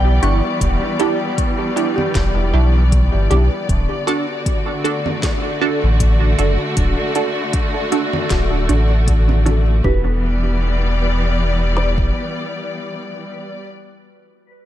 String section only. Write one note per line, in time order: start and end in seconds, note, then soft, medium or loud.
0.00 3.69 E3 medium
0.00 3.69 G3 medium
0.00 5.66 B3 medium
0.00 9.84 D5 medium
3.70 9.85 D3 medium
4.07 9.85 F#4 medium
4.72 9.85 A3 medium
9.84 13.34 E3 medium
9.96 13.46 B3 medium
10.08 13.57 G3 medium
10.18 13.67 D5 medium